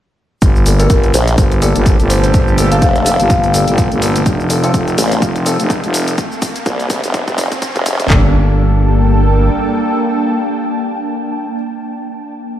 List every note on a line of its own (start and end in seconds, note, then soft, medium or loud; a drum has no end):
0.42 0.88 G1 medium
0.42 4.22 A#2 medium
0.42 5.03 D4 medium
0.42 4.22 G4 medium
0.42 6.14 A4 medium
0.42 kick loud
0.42 closed hi-hat medium
0.42 riser medium
0.42 shaker soft
0.56 shaker soft
0.66 0.76 A#3 medium
0.66 0.76 D4 medium
0.66 0.76 G4 medium
0.66 0.76 A4 medium
0.66 open hi-hat loud
0.66 shaker medium
0.80 0.89 A#3 medium
0.80 0.89 D4 medium
0.80 0.89 G4 medium
0.80 0.89 A4 loud
0.80 0.96 A#4 medium
0.80 closed hi-hat medium
0.80 shaker soft
0.84 6.18 A3 medium
0.90 1.12 G1 medium
0.90 kick loud
0.90 closed hi-hat medium
0.90 shaker soft
1.04 4.26 A5 medium
1.04 closed hi-hat soft
1.04 shaker soft
1.14 1.36 A#1 medium
1.14 1.32 C5 medium
1.14 open hi-hat loud
1.14 shaker medium
1.28 closed hi-hat medium
1.28 shaker soft
1.38 1.73 G1 medium
1.38 kick loud
1.38 closed hi-hat medium
1.38 shaker soft
1.52 closed hi-hat soft
1.52 shaker soft
1.62 1.75 A#3 medium
1.62 1.75 D4 medium
1.62 1.75 G4 medium
1.62 1.75 A4 loud
1.62 open hi-hat loud
1.62 shaker medium
1.66 5.03 G5 medium
1.76 1.97 G1 medium
1.76 closed hi-hat medium
1.76 shaker soft
1.86 kick loud
1.86 closed hi-hat medium
1.86 shaker soft
2.00 2.32 G1 medium
2.00 closed hi-hat soft
2.00 shaker soft
2.10 2.19 C5 medium
2.10 open hi-hat loud
2.10 shaker medium
2.23 2.30 C5 medium
2.23 closed hi-hat medium
2.23 shaker soft
2.34 2.80 G1 medium
2.34 kick loud
2.34 closed hi-hat medium
2.34 shaker soft
2.48 shaker soft
2.58 2.70 A#3 medium
2.58 2.70 D4 medium
2.58 2.70 G4 medium
2.58 2.70 A4 medium
2.58 open hi-hat loud
2.58 shaker medium
2.72 2.81 A#3 medium
2.72 2.81 D4 medium
2.72 2.81 G4 medium
2.72 2.81 A4 medium
2.72 2.88 F5 medium
2.72 closed hi-hat medium
2.72 shaker soft
2.82 3.17 F1 medium
2.82 kick loud
2.82 closed hi-hat medium
2.82 shaker soft
2.96 closed hi-hat soft
2.96 shaker soft
3.06 3.15 F5 medium
3.06 open hi-hat loud
3.06 shaker medium
3.20 3.65 G1 loud
3.20 3.26 F5 medium
3.20 closed hi-hat medium
3.20 shaker soft
3.30 kick loud
3.30 closed hi-hat medium
3.30 shaker soft
3.44 closed hi-hat soft
3.44 shaker soft
3.54 3.99 A#3 medium
3.54 3.99 D4 medium
3.54 3.99 G4 medium
3.54 3.99 A4 medium
3.54 open hi-hat loud
3.54 shaker medium
3.68 3.89 G1 loud
3.68 closed hi-hat medium
3.68 shaker soft
3.78 kick loud
3.78 closed hi-hat medium
3.78 shaker soft
3.92 4.24 G1 loud
3.92 closed hi-hat soft
3.92 shaker soft
4.02 4.15 A#3 medium
4.02 4.15 D4 medium
4.02 4.15 G4 medium
4.02 4.15 A4 medium
4.02 open hi-hat loud
4.02 shaker medium
4.16 closed hi-hat medium
4.16 shaker soft
4.26 4.72 F1 loud
4.26 6.16 C3 medium
4.26 6.18 C4 medium
4.26 6.16 F4 medium
4.26 kick loud
4.26 closed hi-hat medium
4.26 shaker soft
4.40 shaker soft
4.50 4.60 A3 medium
4.50 4.60 C4 medium
4.50 4.60 F4 medium
4.50 4.60 A4 medium
4.50 open hi-hat loud
4.50 shaker medium
4.64 4.73 A3 medium
4.64 4.73 C4 medium
4.64 4.73 F4 medium
4.64 4.73 A4 loud
4.64 closed hi-hat medium
4.64 shaker soft
4.74 4.96 F1 medium
4.74 kick loud
4.74 closed hi-hat medium
4.74 shaker soft
4.88 closed hi-hat soft
4.88 shaker soft
4.98 5.20 A1 loud
4.98 open hi-hat loud
4.98 shaker medium
5.12 6.18 F5 medium
5.12 6.18 A5 medium
5.12 closed hi-hat soft
5.12 shaker soft
5.22 5.57 F1 loud
5.22 kick loud
5.22 closed hi-hat medium
5.22 shaker soft
5.36 closed hi-hat soft
5.36 shaker soft
5.46 5.59 A3 loud
5.46 5.59 C4 medium
5.46 5.59 F4 medium
5.46 5.59 A4 loud
5.46 open hi-hat loud
5.46 shaker medium
5.60 5.81 F1 loud
5.60 closed hi-hat soft
5.60 shaker soft
5.70 kick loud
5.70 closed hi-hat medium
5.70 shaker soft
5.84 6.16 F1 loud
5.84 closed hi-hat soft
5.84 shaker soft
5.94 open hi-hat loud
5.94 shaker medium
6.08 closed hi-hat medium
6.08 shaker soft
6.18 kick loud
6.18 closed hi-hat medium
6.18 shaker soft
6.32 shaker soft
6.42 kick loud
6.42 open hi-hat loud
6.42 shaker medium
6.56 closed hi-hat medium
6.56 shaker soft
6.66 7.01 C2 medium
6.66 kick loud
6.66 closed hi-hat medium
6.66 shaker soft
6.80 closed hi-hat soft
6.80 shaker soft
6.90 kick loud
6.90 open hi-hat loud
6.90 shaker medium
7.04 7.25 F1 loud
7.04 closed hi-hat soft
7.04 shaker soft
7.14 kick loud
7.14 closed hi-hat medium
7.14 shaker soft
7.28 7.49 F1 loud
7.28 kick medium
7.28 closed hi-hat soft
7.28 shaker soft
7.38 kick loud
7.38 open hi-hat loud
7.38 shaker medium
7.52 kick medium
7.52 closed hi-hat soft
7.52 shaker soft
7.62 kick loud
7.62 closed hi-hat medium
7.62 shaker soft
7.76 8.08 F1 loud
7.76 kick medium
7.76 closed hi-hat soft
7.76 shaker soft
7.86 kick loud
7.86 open hi-hat loud
7.86 shaker medium
8.00 kick medium
8.00 closed hi-hat medium
8.00 shaker soft
8.10 9.50 G1 loud
8.10 11.55 G3 medium
8.10 11.55 A#3 medium
8.10 11.55 D4 medium
8.10 11.55 G4 medium
8.10 11.55 A4 medium
8.10 kick loud
8.10 clap medium
8.10 floor tom loud
8.18 11.63 A#3 medium
8.26 11.70 G5 medium
8.32 11.77 A5 medium